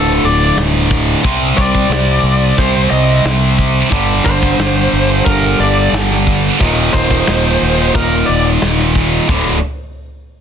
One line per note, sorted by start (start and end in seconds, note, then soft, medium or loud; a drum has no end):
0.00 0.18 D1 medium
0.00 1.22 D2 medium
0.00 1.22 A2 medium
0.00 1.23 D3 medium
0.00 0.23 A4 medium
0.24 0.52 D1 medium
0.24 0.57 D5 medium
0.57 1.13 D1 medium
0.57 snare loud
0.57 open hi-hat medium
0.91 kick medium
1.23 1.52 C2 medium
1.23 3.89 C3 medium
1.23 3.92 G3 medium
1.23 3.90 C4 medium
1.23 kick loud
1.23 open hi-hat soft
1.57 1.86 C2 medium
1.57 2.54 D5 medium
1.57 kick medium
1.75 kick medium
1.90 2.18 C2 medium
1.90 snare loud
1.90 open hi-hat medium
2.23 2.52 C2 medium
2.58 2.86 C2 medium
2.58 2.90 C5 medium
2.58 kick medium
2.58 open hi-hat soft
2.90 3.19 C2 medium
2.90 3.23 D#5 medium
3.25 3.81 C2 medium
3.25 snare loud
3.25 open hi-hat soft
3.59 kick medium
3.91 4.20 G1 medium
3.91 6.58 G2 medium
3.91 6.58 D3 medium
3.91 6.59 G3 medium
3.91 kick loud
3.91 open hi-hat soft
4.25 4.54 G1 medium
4.25 5.22 C5 medium
4.25 kick medium
4.43 kick medium
4.59 4.87 G1 medium
4.59 snare loud
4.59 open hi-hat medium
4.93 5.21 G1 medium
5.25 5.54 G1 medium
5.25 5.58 A#4 medium
5.25 kick medium
5.25 open hi-hat medium
5.60 5.88 G1 medium
5.60 5.92 D5 medium
5.93 6.49 G1 medium
5.93 snare loud
5.93 open hi-hat medium
6.11 snare soft
6.27 kick medium
6.59 6.88 D#1 medium
6.59 9.26 D#2 medium
6.59 9.27 A#2 medium
6.59 9.27 D#3 medium
6.59 kick loud
6.59 open hi-hat medium
6.93 7.22 D#1 medium
6.93 7.90 C5 medium
6.93 kick medium
7.11 kick medium
7.27 7.56 D#1 medium
7.27 snare loud
7.27 open hi-hat soft
7.63 7.90 D#1 medium
7.94 8.22 D#1 medium
7.94 8.27 A#4 medium
7.94 kick medium
7.94 open hi-hat soft
8.26 8.57 D#1 medium
8.26 8.47 D5 medium
8.62 9.18 D#1 medium
8.62 snare medium
8.62 open hi-hat soft
8.79 snare soft
8.95 kick medium
9.28 9.60 D1 medium
9.28 9.55 D2 medium
9.28 9.56 A2 medium
9.28 9.56 D3 medium
9.28 kick medium
9.28 floor tom medium